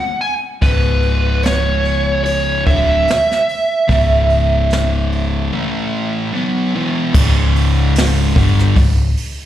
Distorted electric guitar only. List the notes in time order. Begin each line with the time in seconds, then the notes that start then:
0.62 C#2 G#2 C#3
2.66 D2 A2 D3
3.88 C#2 G#2 C#3
5.53 A2 E3 A3
6.33 B2 F#3 B3
6.74 E2 B2 E3
7.14 C#2 G#2 C#3
8.35 G2 D3 G3
8.77 C#2 G#2